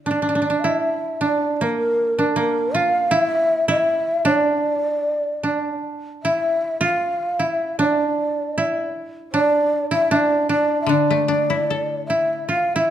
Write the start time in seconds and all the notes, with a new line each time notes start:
Already playing: E4
0.05 D4 D5
0.11 D4
0.22 D4
0.29 D4
0.35 D4
0.42 D4
0.50 D4
0.60 F5
0.64 E4
0.68 E5
1.21 D4 D5
1.56 D5
1.61 A#3 A#4
2.19 D4
2.36 A#3 A#4
2.75 F4 F5
3.11 E4 E5
3.68 E4 E5
4.25 D4 C#5
4.38 D5
5.43 D4
6.23 E4 E5
6.81 F4 F5
7.39 E4 F5
7.45 E5
7.79 D4 D5
8.58 E4
9.32 D4 D5
9.91 E4 E5
10.11 D4 E5
10.16 D5
10.49 D4 D5
10.81 E5
10.86 D3 D4 D5
11.10 A3
11.28 D4
11.50 E4
11.70 A4
12.06 E4 E5
12.48 F4 F5
12.76 E4 E5